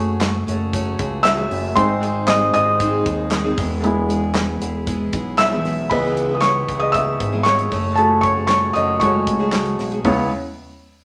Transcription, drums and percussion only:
0.21 snare loud
0.21 clap medium
0.21 closed hi-hat medium
0.48 closed hi-hat medium
0.73 kick medium
0.73 closed hi-hat medium
0.99 kick loud
0.99 closed hi-hat medium
1.25 snare loud
1.25 clap medium
1.25 closed hi-hat medium
1.51 open hi-hat medium
1.76 kick loud
1.76 closed hi-hat medium
2.03 closed hi-hat medium
2.28 snare loud
2.28 clap medium
2.28 closed hi-hat medium
2.54 closed hi-hat medium
2.80 kick medium
2.80 closed hi-hat medium
3.06 kick loud
3.06 closed hi-hat medium
3.31 snare medium
3.31 clap medium
3.31 closed hi-hat medium
3.58 kick loud
3.58 snare soft
3.58 open hi-hat medium
3.84 closed hi-hat medium
4.10 closed hi-hat medium
4.35 snare loud
4.35 clap medium
4.35 closed hi-hat medium
4.62 closed hi-hat medium
4.87 kick medium
4.87 closed hi-hat medium
5.13 kick loud
5.13 closed hi-hat medium
5.38 snare medium
5.38 clap medium
5.38 closed hi-hat medium
5.65 snare soft
5.65 open hi-hat medium
5.91 kick medium
5.91 crash medium
6.17 closed hi-hat medium
6.41 snare loud
6.41 clap medium
6.41 closed hi-hat medium
6.68 kick medium
6.68 closed hi-hat medium
6.94 kick medium
6.94 closed hi-hat medium
7.20 kick loud
7.20 closed hi-hat medium
7.46 snare medium
7.46 clap medium
7.46 closed hi-hat medium
7.59 closed hi-hat soft
7.72 kick medium
7.72 snare soft
7.72 open hi-hat medium
7.97 closed hi-hat medium
8.23 kick medium
8.23 closed hi-hat medium
8.48 snare loud
8.48 clap medium
8.48 closed hi-hat medium
8.76 closed hi-hat medium
9.01 kick medium
9.01 closed hi-hat medium
9.27 kick loud
9.27 closed hi-hat medium
9.52 snare medium
9.52 clap medium
9.52 closed hi-hat medium
9.66 closed hi-hat soft
9.79 snare soft
9.79 open hi-hat medium
9.92 closed hi-hat soft
10.05 kick medium
10.05 floor tom medium
10.05 open hi-hat medium

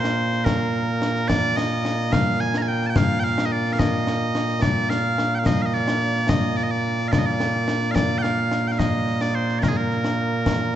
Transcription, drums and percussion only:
0.04 snare medium
0.32 snare soft
0.46 concert bass drum medium
0.46 snare loud
1.02 snare medium
1.16 snare soft
1.30 concert bass drum medium
1.30 snare loud
1.57 snare medium
1.85 snare medium
2.13 concert bass drum medium
2.13 snare loud
2.41 snare soft
2.54 snare medium
2.82 snare soft
2.96 concert bass drum medium
2.96 snare loud
3.24 snare soft
3.38 snare medium
3.66 snare soft
3.79 concert bass drum medium
3.79 snare loud
4.07 snare medium
4.35 snare medium
4.49 snare soft
4.62 concert bass drum medium
4.62 snare loud
4.90 snare medium
5.18 snare medium
5.46 concert bass drum medium
5.46 snare loud
5.74 snare soft
5.88 snare medium
6.16 snare soft
6.29 concert bass drum medium
6.29 snare loud
6.57 snare soft
6.99 snare soft
7.13 concert bass drum medium
7.13 snare loud
7.40 snare medium
7.68 snare medium
7.82 snare soft
7.96 concert bass drum medium
7.96 snare loud
8.24 snare medium
8.51 snare medium
8.79 concert bass drum medium
8.79 snare medium
9.07 snare soft
9.21 snare medium
9.49 snare soft
9.63 concert bass drum medium
9.63 snare medium
9.91 snare soft
10.04 snare medium
10.46 concert bass drum medium
10.46 snare loud

